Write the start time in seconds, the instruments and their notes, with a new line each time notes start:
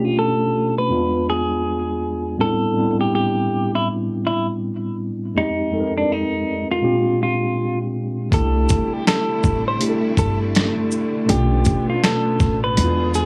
Already playing: tine electric piano B2 A3 C#4 D4 F4 G4 C5
0.05 clean electric guitar F4
0.19 clean electric guitar A4
0.78 clean electric guitar B4
0.89 tine electric piano E2 G#3 B3 D4 F4
1.30 clean electric guitar G#4
2.38 tine electric piano A2 G3 B3 C4 D4 E4, clean electric guitar A4
2.76 tine electric piano A2 G3 B3 C4 D4 E4
3.01 clean electric guitar G4
3.15 clean electric guitar G4
3.75 clean electric guitar E4
4.27 clean electric guitar E4
5.35 tine electric piano F2 G#3 C4 D#4 G4, clean electric guitar D#4
5.71 tine electric piano F2 G#3 C4 D#4 A4
5.80 tine electric piano A#4
5.98 clean electric guitar D4
6.12 clean electric guitar D#4
6.71 clean electric guitar F4
6.82 tine electric piano A#2 G#3 C4 D4 F4 G4
7.23 clean electric guitar F4
8.31 upright bass C2, tine electric piano C3 A3 D4 E4 G4, string section C3 D3 G3 A3 E4, clean electric guitar A4, kick, closed hi-hat
8.69 kick, closed hi-hat, shaker
8.93 clean electric guitar G4
9.07 clean electric guitar A4, finger snap, snare, closed hi-hat
9.44 upright bass A1, kick, shaker
9.68 clean electric guitar C5
9.80 tine electric piano C3 A3 D4 E4 G4, closed hi-hat
9.89 tine electric piano A4
10.17 upright bass G1, clean electric guitar A4, kick, closed hi-hat, shaker
10.55 finger snap, snare, closed hi-hat
10.92 shaker
11.26 upright bass B1, tine electric piano B2 A3 C#4 D4 F4, string section B3, closed hi-hat
11.30 clean electric guitar G4
11.65 kick, closed hi-hat, shaker
11.90 clean electric guitar F4
12.04 clean electric guitar A4, finger snap, snare, closed hi-hat
12.40 upright bass A1, kick, snare, shaker
12.64 clean electric guitar B4
12.75 tine electric piano E2 G#3 B3 D4 E4, upright bass E2, string section E3 B3 F4 G#4, closed hi-hat
12.84 tine electric piano F4
13.14 clean electric guitar G#4, closed hi-hat, shaker